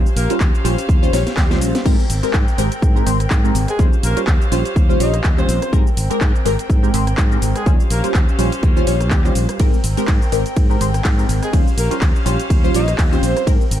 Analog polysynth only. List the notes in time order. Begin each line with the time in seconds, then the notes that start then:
0.30 G3 C#4 F4 C5
0.64 G3 C#4 F4 C5
1.02 G3 C#4 F4 C5
1.13 G3 C#4 F4 C#5
1.50 G3 C#4 F4 C5
1.85 G#3 C4 G4 A#4
2.23 G#3 C4 G4 A#4
2.58 G#3 C4 G4 A#4
2.95 G#3 C4 G4 A#4
3.06 G#3 C4 G4 C5
3.44 G#3 C4 G4 A#4
3.79 G3 C#4 F4 C5
4.16 G3 C#4 F4 C5
4.51 G3 C#4 F4 C5
4.89 G3 C#4 F4 C5
5.00 G3 C#4 F4 C#5
5.37 G3 C#4 F4 C5
5.73 G#3 C4 G4 A#4
6.10 G#3 C4 G4 A#4
6.45 G#3 C4 G4 A#4
6.83 G#3 C4 G4 A#4
6.94 G#3 C4 G4 C5
7.31 G#3 C4 G4 A#4
7.66 G3 C#4 F4 C5
8.04 G3 C#4 F4 C5
8.38 G3 C#4 F4 C5
8.76 G3 C#4 F4 C5
8.87 G3 C#4 F4 C#5
9.25 G3 C#4 F4 C5
9.59 G#3 C4 G4 A#4
9.97 G#3 C4 G4 A#4
10.32 G#3 C4 G4 A#4
10.70 G#3 C4 G4 A#4
10.80 G#3 C4 G4 C5
11.18 G#3 C4 G4 A#4
11.53 G3 C#4 F4 C5
11.91 G3 C#4 F4 C5
12.25 G3 C#4 F4 C5
12.63 G3 C#4 F4 C5
12.74 G3 C#4 F4 C#5
13.12 G3 C#4 F4 C5
13.47 G#3 C4 G4 A#4